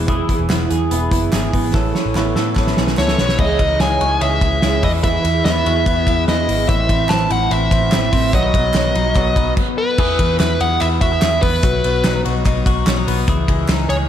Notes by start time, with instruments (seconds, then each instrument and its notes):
Already playing: picked electric bass E1, clean electric guitar B3
0.07 steel-string acoustic guitar E3 B3 E4 G#4, clean electric guitar E3 G#4, kick, closed hi-hat
0.28 steel-string acoustic guitar B3 E4 G#4, clean electric guitar E4, kick, closed hi-hat
0.39 picked electric bass E1
0.48 picked electric bass E1, steel-string acoustic guitar E3 B3 E4 G#4, clean electric guitar B3, snare, clap, closed hi-hat
0.70 picked electric bass E2, steel-string acoustic guitar B3 E4 G#4, clean electric guitar G#4, closed hi-hat
0.90 picked electric bass E1, steel-string acoustic guitar E3 B3 E4 G#4, clean electric guitar B3, closed hi-hat
1.11 picked electric bass F#1, steel-string acoustic guitar B3 E4 G#4, clean electric guitar E4, kick, closed hi-hat
1.31 picked electric bass G#1, steel-string acoustic guitar E3 B3 E4 G#4, clean electric guitar G#4, snare, clap, closed hi-hat
1.52 picked electric bass G#1, clean electric guitar B3, steel-string acoustic guitar B3 E4 G#4, kick, open hi-hat
1.73 picked electric bass A1, clean electric guitar E3 A4, steel-string acoustic guitar A3 B3 E4 A4 C#5, kick, snare
1.93 clean electric guitar C#4, steel-string acoustic guitar E4 A4 C#5, snare
2.06 picked electric bass A1
2.15 picked electric bass A1, steel-string acoustic guitar A3 B3 E4 A4 C#5, clean electric guitar B3, snare, clap
2.36 picked electric bass A2, clean electric guitar A4, steel-string acoustic guitar A4 C#5, snare
2.40 steel-string acoustic guitar E4
2.55 picked electric bass A1, clean electric guitar B3, steel-string acoustic guitar B3 E4 A4, kick, snare, clap
2.60 steel-string acoustic guitar C#5
2.67 snare
2.77 picked electric bass B1, clean electric guitar C#4, steel-string acoustic guitar E4 A4 C#5, snare
2.87 snare
2.97 picked electric bass C#2, steel-string acoustic guitar A3 B3 E4 A4 C#5, clean electric guitar A4, lead electric guitar C#5, snare, clap
3.08 snare
3.17 picked electric bass B1, clean electric guitar B3, steel-string acoustic guitar E4 A4 C#5, snare
3.29 snare
3.38 picked electric bass C#2, steel-string acoustic guitar C#3 G#3 C#4 E4 G#4 D#5, clean electric guitar E3, lead electric guitar D#5, kick, crash
3.59 picked electric bass C#2, steel-string acoustic guitar C#4 E4 D#5, clean electric guitar D#4, kick, ride
3.80 picked electric bass C#2, steel-string acoustic guitar C#3 G#3 C#4 E4 G#4 D#5, clean electric guitar G#3, lead electric guitar G#5, snare, ride
4.01 picked electric bass C#2, steel-string acoustic guitar C#4 E4 G#4 D#5, clean electric guitar F#4, ride
4.12 clean electric guitar G#4
4.21 picked electric bass C#2, clean electric guitar G#3, steel-string acoustic guitar C#4 E4 G#4 D#5, lead electric guitar E5, ride
4.41 picked electric bass C#2, steel-string acoustic guitar E4 G#4 D#5, kick, ride
4.45 steel-string acoustic guitar C#4
4.62 picked electric bass C#2, steel-string acoustic guitar C#3 G#3 C#4 E4 G#4 D#5, clean electric guitar G#3, snare, ride
4.82 picked electric bass E2, clean electric guitar E3, steel-string acoustic guitar E4 G#4 B4, lead electric guitar D#5, kick, open hi-hat, ride
5.02 steel-string acoustic guitar E3 B3 E4 G#4 B4, clean electric guitar E3, lead electric guitar E5, kick, hi-hat pedal, ride
5.24 picked electric bass E2, clean electric guitar E4, steel-string acoustic guitar E4 G#4 B4, ride
5.45 picked electric bass E2, steel-string acoustic guitar E3 B3 E4 G#4 B4, clean electric guitar B3, lead electric guitar E5, snare, ride
5.64 picked electric bass E2, steel-string acoustic guitar E4 G#4 B4, clean electric guitar F#4, ride
5.76 clean electric guitar G#4
5.86 picked electric bass E2, steel-string acoustic guitar B3 E4 G#4 B4, clean electric guitar B3, kick, ride
6.06 picked electric bass E2, clean electric guitar E4, steel-string acoustic guitar E4 G#4 B4, kick, ride
6.27 picked electric bass E2, steel-string acoustic guitar E3 B3 E4 G#4 B4, clean electric guitar B3, lead electric guitar D#5, snare, ride
6.47 picked electric bass G#1, clean electric guitar E4, steel-string acoustic guitar E4 G#4 B4, open hi-hat, ride
6.68 picked electric bass A1, steel-string acoustic guitar A2 E3 A3 C4 E4 C5, clean electric guitar E3, lead electric guitar E5, kick, hi-hat pedal, ride
6.89 picked electric bass A1, steel-string acoustic guitar A3 C4 E4 C5, clean electric guitar C4, kick, ride
7.09 picked electric bass A1, steel-string acoustic guitar A2 E3 A3 C4 E4 C5, clean electric guitar E3, lead electric guitar A5, snare, clap, ride
7.30 picked electric bass A1, steel-string acoustic guitar A3 C4 E4 C5, clean electric guitar E4, lead electric guitar F#5, ride
7.50 picked electric bass A1, clean electric guitar E3, steel-string acoustic guitar A3 C4 E4 C5, lead electric guitar E5, ride
7.71 picked electric bass A1, steel-string acoustic guitar A3 C4 E4 C5, clean electric guitar C4, kick, ride
7.92 picked electric bass A1, steel-string acoustic guitar A2 E3 A3 C4 E4 C5, clean electric guitar E3, snare, clap, ride
8.11 picked electric bass A1, steel-string acoustic guitar A3 C4 E4 C5, clean electric guitar C4, kick, open hi-hat, ride
8.32 picked electric bass B1, steel-string acoustic guitar B2 D#3 F#3 B3 D#4 B4, clean electric guitar F#3, lead electric guitar D#5, kick, hi-hat pedal, ride
8.53 picked electric bass B1, steel-string acoustic guitar F#3 B3 D#4 B4, clean electric guitar B3, kick, ride
8.74 picked electric bass B1, steel-string acoustic guitar B2 D#3 F#3 B3 D#4 B4, clean electric guitar F#3, snare, clap, ride
8.94 picked electric bass B1, steel-string acoustic guitar F#3 B3 D#4 B4, clean electric guitar D#4, ride
9.15 picked electric bass B1, steel-string acoustic guitar F#3 B3 D#4 B4, clean electric guitar F#3, kick, clap, ride
9.36 picked electric bass B1, steel-string acoustic guitar F#3 B3 D#4 B4, clean electric guitar B3, kick, ride
9.57 kick, crash
9.78 lead electric guitar B4
9.98 picked electric bass E2, clean electric guitar E3 G#4, kick, crash
10.19 picked electric bass E2, clean electric guitar B3, kick, ride
10.40 picked electric bass E2, clean electric guitar E4, lead electric guitar B4, snare, clap, ride
10.60 picked electric bass E2, clean electric guitar G#4, lead electric guitar F#5, ride
10.80 picked electric bass E2, clean electric guitar E4, lead electric guitar E5, clap, ride
11.01 picked electric bass E2, clean electric guitar F#4, lead electric guitar E5, kick, ride
11.12 clean electric guitar G#4
11.22 picked electric bass E2, clean electric guitar E4, snare, clap, ride
11.42 picked electric bass E2, clean electric guitar B3, lead electric guitar B4, kick, open hi-hat, ride
11.63 picked electric bass B1, clean electric guitar F#3 F#4, kick, hi-hat pedal, ride
11.84 picked electric bass B1, clean electric guitar B3, ride
12.04 picked electric bass B1, clean electric guitar D#4, snare, clap, ride
12.25 picked electric bass B1, clean electric guitar F#4, ride
12.46 picked electric bass B1, clean electric guitar D#4, kick, clap, ride
12.66 picked electric bass B1, clean electric guitar F#4, kick, ride
12.87 picked electric bass B1, clean electric guitar C#4, snare, clap, ride
12.97 clean electric guitar D#4
13.07 picked electric bass B1, clean electric guitar B3, open hi-hat, ride
13.28 picked electric bass C#2, clean electric guitar E3 G#4, kick, hi-hat pedal, ride
13.48 picked electric bass C#2, clean electric guitar G#3, kick, ride
13.68 picked electric bass C#2, clean electric guitar D#4, snare, clap, ride
13.89 picked electric bass C#2, clean electric guitar G#4, lead electric guitar C#5, ride